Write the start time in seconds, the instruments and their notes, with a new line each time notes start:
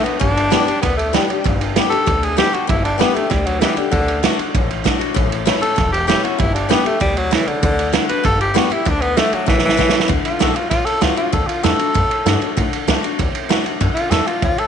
Already playing: steel-string acoustic guitar A2
0.04 tenor saxophone B3, steel-string acoustic guitar D4 F#4, muted upright bass stroke, ride
0.20 upright bass G1, steel-string acoustic guitar G2, tenor saxophone D4, kick, ride
0.37 ride
0.50 steel-string acoustic guitar G3 B3 D4 G4, snare, ride
0.67 steel-string acoustic guitar D4 G4, muted upright bass stroke, ride
0.81 upright bass D2, steel-string acoustic guitar D3, tenor saxophone B3, kick, snare, ride
0.97 tenor saxophone A3, ride
1.13 steel-string acoustic guitar G3 B3 D4 G4, tenor saxophone G3, snare, ride
1.28 tenor saxophone G3, steel-string acoustic guitar D4 G4, muted upright bass stroke, ride
1.44 upright bass G1, steel-string acoustic guitar G2, kick, ride
1.61 ride
1.76 steel-string acoustic guitar G3 B3 D4 G4, snare, ride
1.90 steel-string acoustic guitar D4 G4, tenor saxophone A4, muted upright bass stroke, ride
2.06 upright bass D2, steel-string acoustic guitar D3, kick, ride
2.23 tenor saxophone G#4, ride
2.37 steel-string acoustic guitar G3 B3 D4 G4, tenor saxophone G4, snare, ride
2.53 steel-string acoustic guitar D4 G4, tenor saxophone F#4, muted upright bass stroke, ride
2.67 upright bass G1, steel-string acoustic guitar G2, tenor saxophone E4, kick, ride
2.84 tenor saxophone D4, ride
2.98 steel-string acoustic guitar G3 B3 D4 G4, tenor saxophone B3, snare, ride
3.14 tenor saxophone A3, steel-string acoustic guitar D4 G4, muted upright bass stroke, ride
3.30 upright bass D2, steel-string acoustic guitar D3, tenor saxophone G3, kick, snare, ride
3.45 tenor saxophone F#3, ride
3.60 tenor saxophone E3, steel-string acoustic guitar G3 B3 D4 G4, snare, ride
3.76 tenor saxophone D3, steel-string acoustic guitar D4 G4, muted upright bass stroke, ride
3.91 upright bass D2, tenor saxophone D3, steel-string acoustic guitar D3, kick, ride
4.08 ride
4.23 steel-string acoustic guitar D3 A3 D4 F#4, snare, ride
4.38 steel-string acoustic guitar D4, muted upright bass stroke, ride
4.55 upright bass A1, steel-string acoustic guitar A2, kick, ride
4.71 ride
4.84 steel-string acoustic guitar D3 A3 D4 F#4, kick, snare, ride
4.99 steel-string acoustic guitar D4 F#4, muted upright bass stroke, ride
5.14 upright bass A1, steel-string acoustic guitar A2, kick, ride
5.32 ride
5.46 steel-string acoustic guitar E3 A3 C#4 E4, snare, ride
5.61 steel-string acoustic guitar C#4 E4, tenor saxophone A4, muted upright bass stroke, ride
5.76 upright bass E1, steel-string acoustic guitar E2, kick, snare, ride
5.92 tenor saxophone G4, ride
6.07 steel-string acoustic guitar E3 A3 C#4 E4, tenor saxophone G4, snare, ride
6.23 steel-string acoustic guitar C#4 E4, tenor saxophone F#4, muted upright bass stroke, ride
6.38 upright bass G1, steel-string acoustic guitar G2, tenor saxophone E4, kick, ride
6.54 tenor saxophone D4, ride
6.69 steel-string acoustic guitar G3 B3 D4 G4, tenor saxophone B3, snare, ride
6.84 tenor saxophone A3, steel-string acoustic guitar D4 G4, muted upright bass stroke, ride
7.00 upright bass D2, steel-string acoustic guitar B2, tenor saxophone G3, kick, ride
7.17 tenor saxophone F#3, ride
7.31 steel-string acoustic guitar C#3, tenor saxophone E3, snare, ride
7.47 tenor saxophone D3, muted upright bass stroke, ride
7.63 upright bass D2, steel-string acoustic guitar D3, tenor saxophone D3, kick, ride
7.79 ride
7.93 steel-string acoustic guitar D3 A3 D4 F#4, snare, ride
8.09 steel-string acoustic guitar D4 F#4, tenor saxophone B4, muted upright bass stroke, ride
8.24 upright bass G1, steel-string acoustic guitar G2, tenor saxophone A4, kick, snare, ride
8.41 tenor saxophone G4, ride
8.54 steel-string acoustic guitar G3 B3 D4 G4, tenor saxophone F#4, snare, ride
8.70 steel-string acoustic guitar D4 G4, tenor saxophone E4, muted upright bass stroke, ride
8.85 upright bass D2, steel-string acoustic guitar D3, tenor saxophone D4, kick, ride
9.01 tenor saxophone B3, ride
9.17 steel-string acoustic guitar D3 A3 D4 F#4, tenor saxophone A3, snare, ride
9.31 tenor saxophone F#3, muted upright bass stroke, ride
9.46 upright bass A1, steel-string acoustic guitar A2, tenor saxophone E3, kick, snare
9.58 snare
9.65 tenor saxophone E3, snare
9.77 steel-string acoustic guitar E3 A3 C#4 E4, kick, snare
9.89 steel-string acoustic guitar E4, snare
9.93 steel-string acoustic guitar C#4, muted upright bass stroke
10.00 snare
10.08 upright bass D2, steel-string acoustic guitar D3, kick, ride
10.24 tenor saxophone F4, muted upright bass stroke, ride
10.39 upright bass B1, steel-string acoustic guitar D3 A3 D4 F#4, tenor saxophone A4, snare, ride
10.54 steel-string acoustic guitar D4 F#4, tenor saxophone F4, muted upright bass stroke, ride
10.70 upright bass A1, steel-string acoustic guitar A2, tenor saxophone F4, kick, snare, ride
10.85 tenor saxophone A4, muted upright bass stroke, ride
11.01 upright bass C#2, steel-string acoustic guitar D3 A3 D4 F#4, tenor saxophone F4, snare, ride
11.16 steel-string acoustic guitar D4 F#4, tenor saxophone F4, muted upright bass stroke, ride
11.32 upright bass D2, steel-string acoustic guitar D3, tenor saxophone A4, kick, ride
11.47 tenor saxophone F4, muted upright bass stroke, ride
11.63 upright bass E2, steel-string acoustic guitar D3 A3 D4 F#4, tenor saxophone A4, snare, ride
11.79 steel-string acoustic guitar D4 F#4, ride
11.94 upright bass F#2, steel-string acoustic guitar A2, kick, ride
12.09 muted upright bass stroke, ride
12.26 upright bass G2, steel-string acoustic guitar D3 A3 D4 F#4, snare, ride
12.41 steel-string acoustic guitar D4 F#4, muted upright bass stroke, ride
12.57 upright bass A2, steel-string acoustic guitar D3, kick, ride
12.72 muted upright bass stroke, ride
12.87 upright bass C#2, steel-string acoustic guitar D3 A3 D4 F#4, snare, ride
13.02 steel-string acoustic guitar D4 F#4, muted upright bass stroke, ride
13.19 upright bass D2, steel-string acoustic guitar A2, kick, ride
13.34 muted upright bass stroke, ride
13.49 upright bass E2, steel-string acoustic guitar D3 A3 D4 F#4, snare, ride
13.64 steel-string acoustic guitar D4 F#4, muted upright bass stroke, ride
13.81 upright bass F#2, steel-string acoustic guitar D3, kick, ride
13.94 tenor saxophone F4, muted upright bass stroke, ride
14.10 upright bass E2, steel-string acoustic guitar D3 A3 D4 F#4, tenor saxophone A4, snare, ride
14.26 steel-string acoustic guitar D4 F#4, tenor saxophone F4, muted upright bass stroke, ride
14.42 upright bass D2, steel-string acoustic guitar A2, tenor saxophone F4, kick, ride
14.57 tenor saxophone A4, muted upright bass stroke, ride